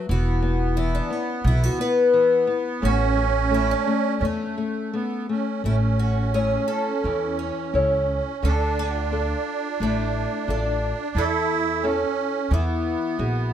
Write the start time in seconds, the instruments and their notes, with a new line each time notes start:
0.09 upright bass E1, nylon-string guitar E3, accordion B3, twelve-string acoustic guitar F#4
0.42 nylon-string guitar B3
0.77 nylon-string guitar E3, twelve-string acoustic guitar E4
0.95 twelve-string acoustic guitar D4
1.10 nylon-string guitar B3, twelve-string acoustic guitar C#4
1.44 upright bass B1, nylon-string guitar E3, twelve-string acoustic guitar E4
1.64 twelve-string acoustic guitar F#4
1.79 nylon-string guitar B3, twelve-string acoustic guitar B4
2.14 nylon-string guitar E3
2.47 nylon-string guitar B3
2.82 upright bass A1, nylon-string guitar A3, accordion C#4, twelve-string acoustic guitar F#4
3.18 nylon-string guitar A3
3.51 nylon-string guitar A3, twelve-string acoustic guitar E4
3.71 twelve-string acoustic guitar D4
3.87 nylon-string guitar A3
4.21 upright bass E2, accordion A3, nylon-string guitar A3
4.25 twelve-string acoustic guitar C#4
4.58 nylon-string guitar A3
4.93 nylon-string guitar A3, accordion B3
5.29 nylon-string guitar A3, accordion C#4
5.64 upright bass A1, nylon-string guitar A3, accordion C#4, twelve-string acoustic guitar E4
5.99 twelve-string acoustic guitar F#4
6.34 nylon-string guitar A3 E4 C#5, twelve-string acoustic guitar G#4
6.68 twelve-string acoustic guitar A4
7.04 upright bass E2, nylon-string guitar E3
7.39 twelve-string acoustic guitar C#4
7.74 upright bass C#2, nylon-string guitar E4 A4 C#5
8.43 upright bass D2, nylon-string guitar D3, accordion D4, twelve-string acoustic guitar A4
8.79 twelve-string acoustic guitar F4
9.12 nylon-string guitar D4 F4 A4
9.80 upright bass A1, nylon-string guitar A3, twelve-string acoustic guitar E4
10.48 upright bass A1, nylon-string guitar D4 F4 A4, twelve-string acoustic guitar D4
11.15 upright bass E2, nylon-string guitar E3, accordion E4, twelve-string acoustic guitar A4
11.82 accordion C#4, nylon-string guitar C#4 E4 A4
12.50 upright bass E2, nylon-string guitar E3, accordion B3, twelve-string acoustic guitar E4
13.19 upright bass A#1, nylon-string guitar E4 F#4 G#4